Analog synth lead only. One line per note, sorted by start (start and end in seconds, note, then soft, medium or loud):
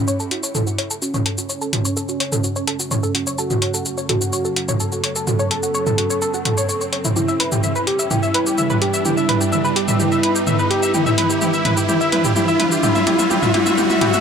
0.00 0.33 C#4 loud
0.31 0.93 E4 loud
1.02 3.29 C#4 loud
3.38 4.00 F#4 loud
4.09 4.71 F#4 loud
4.80 7.07 A4 loud
7.16 7.87 E4 loud
7.87 8.09 G4 medium
8.11 8.81 E4 loud
8.82 9.03 G4 medium
9.05 9.75 E4 loud
9.76 9.98 G4 medium
10.00 10.70 E4 loud
10.71 10.92 G4 medium
10.94 11.40 E4 loud
11.41 11.87 E4 loud
11.89 12.34 E4 loud
12.36 12.81 E4 loud
12.83 13.05 E4 loud
13.07 13.29 E4 loud
13.30 13.52 E4 loud
13.54 13.76 E4 loud
13.78 13.99 E4 loud
14.01 14.20 E4 loud